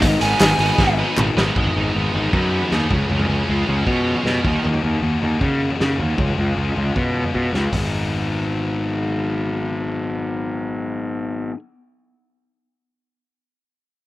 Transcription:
Already playing: string machine D#5
0.01 picked electric bass G#1, distorted electric guitar D#3 B3 D#4, string machine G#4 B4 B5, lead electric guitar D#5, kick, open hi-hat
0.20 picked electric bass G#1, distorted electric guitar G#3 B3 D#4 B4, lead electric guitar G#5, open hi-hat
0.40 picked electric bass G#1, distorted electric guitar D#3 B3 D#4, snare, clap, open hi-hat
0.58 picked electric bass G#1, distorted electric guitar G#3 B3 D#4 B4, open hi-hat
0.78 picked electric bass G#1, kick, snare
0.97 distorted electric guitar G#3 B3 D#4 B4
1.17 picked electric bass G#1, distorted electric guitar D#3 B3 D#4, clap, mid tom
1.37 picked electric bass G#1, distorted electric guitar G#3 B3 D#4 B4, snare
1.55 picked electric bass G#1, distorted electric guitar G#3 B3 D#4 G#4, kick, floor tom
1.66 floor tom
1.74 picked electric bass G#1, distorted electric guitar D#4 G#4
1.95 picked electric bass G#1, distorted electric guitar B3 D#4 G#4
2.14 picked electric bass G#1, distorted electric guitar D#4 G#4, floor tom
2.33 picked electric bass F#2, distorted electric guitar B3 D#4 G#4 B4, kick, floor tom
2.54 distorted electric guitar B3
2.62 floor tom
2.71 picked electric bass D#2, distorted electric guitar B3 D#4 G#4, snare
2.90 picked electric bass C#2, distorted electric guitar C#3 F3 G#3 C#4 G#4, kick, floor tom
3.09 picked electric bass C#2, distorted electric guitar C#3 F3 G#3 C#4 G#4, floor tom
3.20 floor tom
3.28 picked electric bass C#2, distorted electric guitar G#3 C#4 G#4
3.48 picked electric bass C#2, distorted electric guitar F3 G#3 C#4 F4 G#4
3.67 picked electric bass C#2, distorted electric guitar G#3 C#4 G#4, floor tom
3.86 picked electric bass B2, distorted electric guitar F3 G#3 C#4 G#4 C#5, kick, floor tom
4.08 distorted electric guitar F4
4.16 floor tom
4.25 picked electric bass B2, distorted electric guitar F3 G#3 C#4 G#4, snare
4.44 picked electric bass D#2, distorted electric guitar D#3 A#3 D#4 F#4, kick, floor tom
4.64 picked electric bass D#2, distorted electric guitar D#3 A#3 D#4 F#4, floor tom
4.74 floor tom
4.83 picked electric bass D#2, distorted electric guitar A#3 D#4 F#4
5.02 picked electric bass D#2, distorted electric guitar D#3 A#3 D#4 F#4
5.21 picked electric bass D#2, distorted electric guitar A#3 D#4 F#4, floor tom
5.41 picked electric bass C#3, distorted electric guitar D#3 A#3 D#4 F#4, kick, floor tom
5.70 floor tom
5.80 picked electric bass C#3, distorted electric guitar D#3 A#3 D#4 F#4, snare
5.98 picked electric bass D#2, distorted electric guitar A#3 D#4 F#4, floor tom
6.18 picked electric bass C#2, distorted electric guitar G#3 C#4 F4, kick, floor tom
6.28 floor tom
6.37 picked electric bass C#2, distorted electric guitar C#4 F4, floor tom
6.57 picked electric bass C#2, distorted electric guitar G#3 C#4 F4
6.76 picked electric bass C#2, distorted electric guitar C#4 F4, floor tom
6.96 picked electric bass B2, distorted electric guitar G#3 C#4 F4, kick, floor tom
7.14 floor tom
7.24 floor tom
7.34 picked electric bass B2, distorted electric guitar G#3 C#4 F4, kick
7.53 picked electric bass C#2, distorted electric guitar C#4 F4, snare
7.72 picked electric bass G#1, distorted electric guitar B3 D#4, kick, floor tom, open hi-hat
7.77 distorted electric guitar G#4

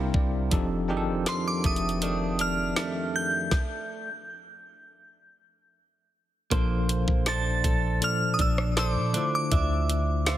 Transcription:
Already playing: 808-style bass C2, tine electric piano C3 G3 D4 E4 A#4 F5, clean electric guitar C3 C4
0.14 808-style bass C2, tine electric piano D5, kick
0.50 808-style bass F1, clean electric guitar F2, tine electric piano F3 C4 D4 D#4 G4 A4, kick, closed hi-hat
0.88 808-style bass G1, clean electric guitar D#3, tine electric piano F3 C4 D4 D#4 G4 G#4
0.97 tine electric piano A4
1.08 808-style bass F1
1.26 synth bell C6, snare, closed hi-hat
1.48 synth bell D6
1.64 808-style bass F1, clean electric guitar A3, synth bell D#6, kick, closed hi-hat
1.76 closed hi-hat
1.89 closed hi-hat
2.02 clean electric guitar D#3 A3 D4, closed hi-hat
2.39 clean electric guitar D4, synth bell F6, closed hi-hat
2.76 clean electric guitar A3, snare, closed hi-hat
3.16 synth bell G6
3.51 kick, snare
6.50 808-style bass A#1, tine electric piano A#2 F3 D4 A4 C5, clean electric guitar A#3 C5, kick, closed hi-hat
6.89 closed hi-hat
7.08 808-style bass A#1, kick
7.26 clean electric guitar D4 A4 C5, synth bell A6, snare, closed hi-hat
7.64 808-style bass A#1, clean electric guitar A4, kick, closed hi-hat
8.01 tine electric piano A#2 F3 D4 A4 D5, synth bell F6, closed hi-hat
8.34 synth bell D#6
8.39 808-style bass A#1, clean electric guitar D4, synth bell E6, kick, closed hi-hat
8.58 cross-stick
8.77 clean electric guitar D4 A4 C5, synth bell D6, snare, closed hi-hat
8.96 808-style bass A#2
9.13 tine electric piano D3 A3 E4 F4 C5, clean electric guitar D4, closed hi-hat
9.35 synth bell D6
9.52 808-style bass D2, clean electric guitar D4 E5, kick, closed hi-hat
9.90 closed hi-hat
10.26 clean electric guitar F4 C5 E5, snare, closed hi-hat

